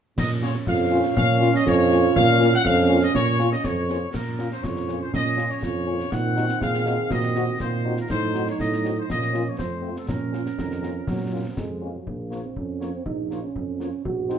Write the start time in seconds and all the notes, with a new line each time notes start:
0.17 A#2 C#4 D#5, concert bass drum, snare, crash
0.41 A#3 C#4 F4 C#5, snare
0.55 snare
0.66 F2 F4 F5, concert bass drum, snare
0.91 A#3 C#4 F4
1.15 A#2 C#4 F5, concert bass drum, snare
1.41 A#3 C#4 F4, snare
1.54 D#5, snare
1.66 F2 F4 C#5, concert bass drum, snare
1.90 A#3 C#4 F4, snare
2.16 A#2 F5, concert bass drum, snare
2.39 A#3 C#4 F4, snare
2.53 F#5, snare
2.64 F2 C#4 F5, concert bass drum, snare
2.89 A#3 C#4 F4
3.03 D#5
3.14 A#2 C#5, concert bass drum, snare
3.39 A#3 C#4 F4, snare
3.51 D#5, snare
3.63 F2 F4 C#5, concert bass drum, snare
3.89 A#3 C#4 F4, snare
4.11 A#2 C#4 A#4, concert bass drum, snare, crash
4.39 A#3 C#4 F4, snare
4.51 C5, snare
4.62 F2 F4 C#5, concert bass drum, snare
4.76 snare
4.88 A#3 C#4 F4, snare
5.01 C5
5.13 A#2 C#4 D#5, concert bass drum, snare
5.26 snare
5.37 A#3 C#4 F4, snare
5.50 C#5
5.63 F2 F4, concert bass drum, snare
5.87 A#3 C#4 F4
6.00 snare
6.11 A#2 D#3 C4 D#4 F#5, concert bass drum, snare
6.36 C4 D#4 F#4, snare
6.49 snare
6.61 A#2 G#4 F5, concert bass drum, snare
6.74 snare
6.86 C4 D#4 F#4, snare
7.10 A#2 F#4 D#5, concert bass drum, snare
7.23 snare
7.35 C4 D#4 F#4, snare
7.60 A#2 F4 C5, concert bass drum, snare
7.85 C4 D#4 F#4
7.97 A#4, snare
8.09 A2 F#3 D#4 C5, concert bass drum, snare, crash
8.34 C4 D#4 F#4, snare
8.47 C#5, snare
8.59 A2 D#5, concert bass drum, snare
8.72 snare
8.84 C4 D#4 F#4, snare
8.98 C5
9.09 A#2 F3 A#3 C#4 D#5, concert bass drum, snare
9.22 snare
9.33 A#3 C#4 F4, snare
9.47 C#5
9.57 F2 A3 C4 C5, concert bass drum, snare
9.82 A3 C4 F4
9.96 A4, snare
10.08 A#2 F3 C#4 A#4, concert bass drum, snare
10.32 A#3 C#4 F4, snare
10.46 snare
10.58 F2 D#3, concert bass drum, snare
10.71 snare
10.82 A#3 C#4 F4, snare
10.98 F3
11.07 A#2 F#3, concert bass drum, snare
11.32 A#3 C#4 F4
11.48 F3
11.57 F2 G#3, concert bass drum, snare
11.82 A#3 C#4 F4
11.97 F#3
12.07 A#1 A#3, concert bass drum
12.30 F3 A#3 F4 C#5, snare
12.45 C4
12.56 F2 C#4, concert bass drum
12.80 F3 A#3 F4 C#5, snare
12.95 C4
13.06 A#1 D#4, concert bass drum
13.30 F3 A#3 F4 C#5, snare
13.43 C#4
13.56 F2, concert bass drum
13.79 F3 A#3 F4 C#5, snare
14.05 A#1 F#4, concert bass drum
14.29 F#3 C4 D#4 C5, snare